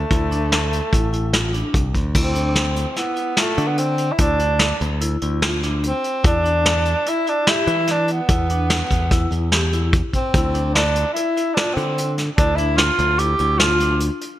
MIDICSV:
0, 0, Header, 1, 5, 480
1, 0, Start_track
1, 0, Tempo, 409277
1, 121, Time_signature, 5, 2, 24, 8
1, 16880, End_track
2, 0, Start_track
2, 0, Title_t, "Vibraphone"
2, 0, Program_c, 0, 11
2, 125, Note_on_c, 0, 64, 69
2, 246, Note_off_c, 0, 64, 0
2, 369, Note_on_c, 0, 62, 64
2, 612, Note_off_c, 0, 62, 0
2, 1085, Note_on_c, 0, 64, 65
2, 1206, Note_off_c, 0, 64, 0
2, 1323, Note_on_c, 0, 64, 60
2, 1445, Note_off_c, 0, 64, 0
2, 1568, Note_on_c, 0, 65, 64
2, 1688, Note_off_c, 0, 65, 0
2, 1799, Note_on_c, 0, 62, 62
2, 2044, Note_off_c, 0, 62, 0
2, 2528, Note_on_c, 0, 64, 67
2, 2649, Note_off_c, 0, 64, 0
2, 2753, Note_on_c, 0, 62, 61
2, 3000, Note_off_c, 0, 62, 0
2, 3480, Note_on_c, 0, 64, 67
2, 3603, Note_off_c, 0, 64, 0
2, 3708, Note_on_c, 0, 64, 69
2, 3834, Note_off_c, 0, 64, 0
2, 3951, Note_on_c, 0, 65, 69
2, 4077, Note_off_c, 0, 65, 0
2, 4192, Note_on_c, 0, 62, 67
2, 4439, Note_off_c, 0, 62, 0
2, 4911, Note_on_c, 0, 64, 83
2, 5037, Note_off_c, 0, 64, 0
2, 5158, Note_on_c, 0, 62, 64
2, 5404, Note_off_c, 0, 62, 0
2, 5875, Note_on_c, 0, 64, 67
2, 5999, Note_off_c, 0, 64, 0
2, 6123, Note_on_c, 0, 64, 67
2, 6246, Note_off_c, 0, 64, 0
2, 6363, Note_on_c, 0, 65, 85
2, 6486, Note_off_c, 0, 65, 0
2, 6607, Note_on_c, 0, 62, 64
2, 6851, Note_off_c, 0, 62, 0
2, 7317, Note_on_c, 0, 64, 78
2, 7442, Note_off_c, 0, 64, 0
2, 7556, Note_on_c, 0, 62, 66
2, 7803, Note_off_c, 0, 62, 0
2, 8290, Note_on_c, 0, 64, 69
2, 8411, Note_off_c, 0, 64, 0
2, 8524, Note_on_c, 0, 64, 66
2, 8646, Note_off_c, 0, 64, 0
2, 8768, Note_on_c, 0, 67, 86
2, 8889, Note_off_c, 0, 67, 0
2, 9004, Note_on_c, 0, 64, 67
2, 9249, Note_off_c, 0, 64, 0
2, 9726, Note_on_c, 0, 64, 80
2, 9848, Note_off_c, 0, 64, 0
2, 9978, Note_on_c, 0, 62, 64
2, 10219, Note_off_c, 0, 62, 0
2, 10692, Note_on_c, 0, 64, 68
2, 10813, Note_off_c, 0, 64, 0
2, 10930, Note_on_c, 0, 64, 58
2, 11051, Note_off_c, 0, 64, 0
2, 11170, Note_on_c, 0, 67, 73
2, 11291, Note_off_c, 0, 67, 0
2, 11415, Note_on_c, 0, 64, 65
2, 11657, Note_off_c, 0, 64, 0
2, 12129, Note_on_c, 0, 64, 78
2, 12250, Note_off_c, 0, 64, 0
2, 12366, Note_on_c, 0, 62, 71
2, 12610, Note_off_c, 0, 62, 0
2, 13092, Note_on_c, 0, 64, 64
2, 13212, Note_off_c, 0, 64, 0
2, 13331, Note_on_c, 0, 64, 60
2, 13451, Note_off_c, 0, 64, 0
2, 13568, Note_on_c, 0, 65, 71
2, 13689, Note_off_c, 0, 65, 0
2, 13803, Note_on_c, 0, 62, 70
2, 14047, Note_off_c, 0, 62, 0
2, 14521, Note_on_c, 0, 64, 73
2, 14643, Note_off_c, 0, 64, 0
2, 14763, Note_on_c, 0, 62, 69
2, 15006, Note_off_c, 0, 62, 0
2, 15474, Note_on_c, 0, 64, 68
2, 15597, Note_off_c, 0, 64, 0
2, 15717, Note_on_c, 0, 64, 65
2, 15839, Note_off_c, 0, 64, 0
2, 15959, Note_on_c, 0, 65, 84
2, 16080, Note_off_c, 0, 65, 0
2, 16205, Note_on_c, 0, 62, 72
2, 16447, Note_off_c, 0, 62, 0
2, 16880, End_track
3, 0, Start_track
3, 0, Title_t, "Tenor saxophone"
3, 0, Program_c, 1, 66
3, 0, Note_on_c, 1, 57, 76
3, 2052, Note_off_c, 1, 57, 0
3, 2546, Note_on_c, 1, 60, 77
3, 3403, Note_off_c, 1, 60, 0
3, 3403, Note_on_c, 1, 60, 57
3, 3493, Note_on_c, 1, 59, 76
3, 3510, Note_off_c, 1, 60, 0
3, 3977, Note_on_c, 1, 57, 81
3, 3994, Note_off_c, 1, 59, 0
3, 4308, Note_on_c, 1, 59, 77
3, 4325, Note_off_c, 1, 57, 0
3, 4435, Note_on_c, 1, 60, 90
3, 4452, Note_off_c, 1, 59, 0
3, 4832, Note_on_c, 1, 64, 59
3, 4849, Note_off_c, 1, 60, 0
3, 4929, Note_on_c, 1, 62, 88
3, 4946, Note_off_c, 1, 64, 0
3, 5647, Note_off_c, 1, 62, 0
3, 6856, Note_on_c, 1, 60, 84
3, 7298, Note_off_c, 1, 60, 0
3, 7341, Note_on_c, 1, 62, 93
3, 8305, Note_on_c, 1, 64, 88
3, 8323, Note_off_c, 1, 62, 0
3, 8547, Note_on_c, 1, 62, 83
3, 8565, Note_off_c, 1, 64, 0
3, 8782, Note_on_c, 1, 64, 98
3, 8800, Note_off_c, 1, 62, 0
3, 9276, Note_on_c, 1, 62, 87
3, 9294, Note_off_c, 1, 64, 0
3, 9502, Note_off_c, 1, 62, 0
3, 9519, Note_on_c, 1, 59, 79
3, 11376, Note_off_c, 1, 59, 0
3, 11893, Note_on_c, 1, 60, 72
3, 12562, Note_off_c, 1, 60, 0
3, 12595, Note_on_c, 1, 62, 81
3, 13046, Note_off_c, 1, 62, 0
3, 13052, Note_on_c, 1, 64, 79
3, 13532, Note_on_c, 1, 62, 84
3, 13550, Note_off_c, 1, 64, 0
3, 13769, Note_on_c, 1, 60, 85
3, 13786, Note_off_c, 1, 62, 0
3, 14265, Note_off_c, 1, 60, 0
3, 14498, Note_on_c, 1, 62, 93
3, 14721, Note_on_c, 1, 64, 83
3, 14738, Note_off_c, 1, 62, 0
3, 14973, Note_on_c, 1, 65, 97
3, 14991, Note_off_c, 1, 64, 0
3, 15462, Note_on_c, 1, 67, 92
3, 15479, Note_off_c, 1, 65, 0
3, 15936, Note_on_c, 1, 65, 89
3, 15953, Note_off_c, 1, 67, 0
3, 16426, Note_off_c, 1, 65, 0
3, 16880, End_track
4, 0, Start_track
4, 0, Title_t, "Picked electric bass"
4, 0, Program_c, 2, 34
4, 129, Note_on_c, 2, 38, 88
4, 936, Note_off_c, 2, 38, 0
4, 1092, Note_on_c, 2, 33, 67
4, 1898, Note_off_c, 2, 33, 0
4, 2042, Note_on_c, 2, 36, 61
4, 2259, Note_off_c, 2, 36, 0
4, 2284, Note_on_c, 2, 38, 62
4, 2500, Note_off_c, 2, 38, 0
4, 2523, Note_on_c, 2, 38, 91
4, 3333, Note_off_c, 2, 38, 0
4, 4198, Note_on_c, 2, 50, 89
4, 4808, Note_off_c, 2, 50, 0
4, 4914, Note_on_c, 2, 38, 87
4, 5526, Note_off_c, 2, 38, 0
4, 5642, Note_on_c, 2, 38, 89
4, 6048, Note_off_c, 2, 38, 0
4, 6126, Note_on_c, 2, 38, 70
4, 6936, Note_off_c, 2, 38, 0
4, 7319, Note_on_c, 2, 40, 84
4, 8132, Note_off_c, 2, 40, 0
4, 8999, Note_on_c, 2, 52, 82
4, 9610, Note_off_c, 2, 52, 0
4, 9725, Note_on_c, 2, 40, 85
4, 10333, Note_off_c, 2, 40, 0
4, 10447, Note_on_c, 2, 40, 86
4, 10851, Note_off_c, 2, 40, 0
4, 10916, Note_on_c, 2, 40, 76
4, 11729, Note_off_c, 2, 40, 0
4, 12131, Note_on_c, 2, 38, 79
4, 12937, Note_off_c, 2, 38, 0
4, 13803, Note_on_c, 2, 50, 85
4, 14409, Note_off_c, 2, 50, 0
4, 14518, Note_on_c, 2, 38, 80
4, 15125, Note_off_c, 2, 38, 0
4, 15233, Note_on_c, 2, 38, 90
4, 15639, Note_off_c, 2, 38, 0
4, 15714, Note_on_c, 2, 38, 82
4, 16523, Note_off_c, 2, 38, 0
4, 16880, End_track
5, 0, Start_track
5, 0, Title_t, "Drums"
5, 126, Note_on_c, 9, 36, 94
5, 132, Note_on_c, 9, 42, 73
5, 243, Note_off_c, 9, 36, 0
5, 249, Note_off_c, 9, 42, 0
5, 373, Note_on_c, 9, 42, 53
5, 490, Note_off_c, 9, 42, 0
5, 611, Note_on_c, 9, 38, 89
5, 611, Note_on_c, 9, 42, 61
5, 729, Note_off_c, 9, 38, 0
5, 729, Note_off_c, 9, 42, 0
5, 852, Note_on_c, 9, 42, 54
5, 969, Note_off_c, 9, 42, 0
5, 1087, Note_on_c, 9, 36, 88
5, 1096, Note_on_c, 9, 42, 80
5, 1204, Note_off_c, 9, 36, 0
5, 1213, Note_off_c, 9, 42, 0
5, 1329, Note_on_c, 9, 42, 48
5, 1446, Note_off_c, 9, 42, 0
5, 1564, Note_on_c, 9, 38, 83
5, 1564, Note_on_c, 9, 42, 73
5, 1681, Note_off_c, 9, 38, 0
5, 1681, Note_off_c, 9, 42, 0
5, 1807, Note_on_c, 9, 42, 57
5, 1924, Note_off_c, 9, 42, 0
5, 2042, Note_on_c, 9, 36, 92
5, 2047, Note_on_c, 9, 42, 74
5, 2159, Note_off_c, 9, 36, 0
5, 2164, Note_off_c, 9, 42, 0
5, 2282, Note_on_c, 9, 36, 61
5, 2286, Note_on_c, 9, 42, 50
5, 2399, Note_off_c, 9, 36, 0
5, 2403, Note_off_c, 9, 42, 0
5, 2520, Note_on_c, 9, 36, 97
5, 2522, Note_on_c, 9, 49, 88
5, 2637, Note_off_c, 9, 36, 0
5, 2639, Note_off_c, 9, 49, 0
5, 2758, Note_on_c, 9, 42, 55
5, 2876, Note_off_c, 9, 42, 0
5, 2997, Note_on_c, 9, 38, 85
5, 2997, Note_on_c, 9, 42, 72
5, 3114, Note_off_c, 9, 38, 0
5, 3114, Note_off_c, 9, 42, 0
5, 3236, Note_on_c, 9, 42, 55
5, 3353, Note_off_c, 9, 42, 0
5, 3475, Note_on_c, 9, 38, 30
5, 3475, Note_on_c, 9, 42, 73
5, 3592, Note_off_c, 9, 38, 0
5, 3592, Note_off_c, 9, 42, 0
5, 3711, Note_on_c, 9, 42, 54
5, 3828, Note_off_c, 9, 42, 0
5, 3950, Note_on_c, 9, 38, 87
5, 3950, Note_on_c, 9, 42, 65
5, 4067, Note_off_c, 9, 38, 0
5, 4067, Note_off_c, 9, 42, 0
5, 4195, Note_on_c, 9, 42, 54
5, 4312, Note_off_c, 9, 42, 0
5, 4429, Note_on_c, 9, 42, 69
5, 4546, Note_off_c, 9, 42, 0
5, 4666, Note_on_c, 9, 42, 54
5, 4783, Note_off_c, 9, 42, 0
5, 4907, Note_on_c, 9, 42, 89
5, 4912, Note_on_c, 9, 36, 98
5, 5024, Note_off_c, 9, 42, 0
5, 5029, Note_off_c, 9, 36, 0
5, 5153, Note_on_c, 9, 42, 58
5, 5271, Note_off_c, 9, 42, 0
5, 5387, Note_on_c, 9, 38, 88
5, 5387, Note_on_c, 9, 42, 64
5, 5504, Note_off_c, 9, 38, 0
5, 5504, Note_off_c, 9, 42, 0
5, 5643, Note_on_c, 9, 42, 51
5, 5760, Note_off_c, 9, 42, 0
5, 5880, Note_on_c, 9, 42, 84
5, 5997, Note_off_c, 9, 42, 0
5, 6117, Note_on_c, 9, 42, 54
5, 6234, Note_off_c, 9, 42, 0
5, 6358, Note_on_c, 9, 38, 92
5, 6358, Note_on_c, 9, 42, 70
5, 6476, Note_off_c, 9, 38, 0
5, 6476, Note_off_c, 9, 42, 0
5, 6604, Note_on_c, 9, 38, 29
5, 6604, Note_on_c, 9, 42, 50
5, 6721, Note_off_c, 9, 38, 0
5, 6721, Note_off_c, 9, 42, 0
5, 6842, Note_on_c, 9, 42, 73
5, 6959, Note_off_c, 9, 42, 0
5, 7084, Note_on_c, 9, 42, 51
5, 7201, Note_off_c, 9, 42, 0
5, 7323, Note_on_c, 9, 36, 103
5, 7330, Note_on_c, 9, 42, 83
5, 7441, Note_off_c, 9, 36, 0
5, 7447, Note_off_c, 9, 42, 0
5, 7569, Note_on_c, 9, 42, 51
5, 7686, Note_off_c, 9, 42, 0
5, 7805, Note_on_c, 9, 38, 98
5, 7805, Note_on_c, 9, 42, 65
5, 7923, Note_off_c, 9, 38, 0
5, 7923, Note_off_c, 9, 42, 0
5, 8036, Note_on_c, 9, 42, 48
5, 8154, Note_off_c, 9, 42, 0
5, 8284, Note_on_c, 9, 42, 77
5, 8401, Note_off_c, 9, 42, 0
5, 8525, Note_on_c, 9, 42, 52
5, 8642, Note_off_c, 9, 42, 0
5, 8761, Note_on_c, 9, 38, 94
5, 8761, Note_on_c, 9, 42, 66
5, 8878, Note_off_c, 9, 38, 0
5, 8878, Note_off_c, 9, 42, 0
5, 8996, Note_on_c, 9, 42, 56
5, 9113, Note_off_c, 9, 42, 0
5, 9234, Note_on_c, 9, 38, 32
5, 9234, Note_on_c, 9, 42, 75
5, 9351, Note_off_c, 9, 38, 0
5, 9351, Note_off_c, 9, 42, 0
5, 9473, Note_on_c, 9, 42, 57
5, 9590, Note_off_c, 9, 42, 0
5, 9718, Note_on_c, 9, 42, 86
5, 9721, Note_on_c, 9, 36, 99
5, 9835, Note_off_c, 9, 42, 0
5, 9838, Note_off_c, 9, 36, 0
5, 9963, Note_on_c, 9, 42, 57
5, 10080, Note_off_c, 9, 42, 0
5, 10203, Note_on_c, 9, 38, 100
5, 10203, Note_on_c, 9, 42, 80
5, 10320, Note_off_c, 9, 38, 0
5, 10320, Note_off_c, 9, 42, 0
5, 10446, Note_on_c, 9, 36, 71
5, 10446, Note_on_c, 9, 42, 57
5, 10563, Note_off_c, 9, 36, 0
5, 10564, Note_off_c, 9, 42, 0
5, 10686, Note_on_c, 9, 36, 107
5, 10686, Note_on_c, 9, 38, 34
5, 10686, Note_on_c, 9, 42, 77
5, 10803, Note_off_c, 9, 36, 0
5, 10803, Note_off_c, 9, 38, 0
5, 10803, Note_off_c, 9, 42, 0
5, 10925, Note_on_c, 9, 42, 45
5, 11043, Note_off_c, 9, 42, 0
5, 11164, Note_on_c, 9, 38, 93
5, 11164, Note_on_c, 9, 42, 71
5, 11281, Note_off_c, 9, 38, 0
5, 11281, Note_off_c, 9, 42, 0
5, 11411, Note_on_c, 9, 42, 50
5, 11528, Note_off_c, 9, 42, 0
5, 11645, Note_on_c, 9, 42, 70
5, 11647, Note_on_c, 9, 36, 99
5, 11763, Note_off_c, 9, 42, 0
5, 11764, Note_off_c, 9, 36, 0
5, 11886, Note_on_c, 9, 36, 61
5, 11886, Note_on_c, 9, 42, 52
5, 12003, Note_off_c, 9, 36, 0
5, 12003, Note_off_c, 9, 42, 0
5, 12125, Note_on_c, 9, 42, 79
5, 12128, Note_on_c, 9, 36, 112
5, 12243, Note_off_c, 9, 42, 0
5, 12245, Note_off_c, 9, 36, 0
5, 12369, Note_on_c, 9, 42, 59
5, 12486, Note_off_c, 9, 42, 0
5, 12612, Note_on_c, 9, 38, 89
5, 12612, Note_on_c, 9, 42, 69
5, 12729, Note_off_c, 9, 38, 0
5, 12729, Note_off_c, 9, 42, 0
5, 12847, Note_on_c, 9, 42, 57
5, 12964, Note_off_c, 9, 42, 0
5, 13091, Note_on_c, 9, 42, 75
5, 13208, Note_off_c, 9, 42, 0
5, 13335, Note_on_c, 9, 42, 58
5, 13452, Note_off_c, 9, 42, 0
5, 13569, Note_on_c, 9, 38, 96
5, 13569, Note_on_c, 9, 42, 71
5, 13687, Note_off_c, 9, 38, 0
5, 13687, Note_off_c, 9, 42, 0
5, 13809, Note_on_c, 9, 42, 53
5, 13927, Note_off_c, 9, 42, 0
5, 14048, Note_on_c, 9, 42, 82
5, 14166, Note_off_c, 9, 42, 0
5, 14282, Note_on_c, 9, 38, 32
5, 14282, Note_on_c, 9, 42, 58
5, 14400, Note_off_c, 9, 38, 0
5, 14400, Note_off_c, 9, 42, 0
5, 14520, Note_on_c, 9, 42, 85
5, 14521, Note_on_c, 9, 36, 108
5, 14637, Note_off_c, 9, 42, 0
5, 14638, Note_off_c, 9, 36, 0
5, 14752, Note_on_c, 9, 42, 57
5, 14870, Note_off_c, 9, 42, 0
5, 14988, Note_on_c, 9, 38, 93
5, 14988, Note_on_c, 9, 42, 69
5, 15105, Note_off_c, 9, 38, 0
5, 15105, Note_off_c, 9, 42, 0
5, 15228, Note_on_c, 9, 42, 55
5, 15345, Note_off_c, 9, 42, 0
5, 15465, Note_on_c, 9, 42, 80
5, 15583, Note_off_c, 9, 42, 0
5, 15701, Note_on_c, 9, 42, 52
5, 15818, Note_off_c, 9, 42, 0
5, 15945, Note_on_c, 9, 38, 86
5, 15945, Note_on_c, 9, 42, 68
5, 16062, Note_off_c, 9, 38, 0
5, 16062, Note_off_c, 9, 42, 0
5, 16185, Note_on_c, 9, 42, 53
5, 16303, Note_off_c, 9, 42, 0
5, 16420, Note_on_c, 9, 42, 78
5, 16537, Note_off_c, 9, 42, 0
5, 16668, Note_on_c, 9, 42, 52
5, 16785, Note_off_c, 9, 42, 0
5, 16880, End_track
0, 0, End_of_file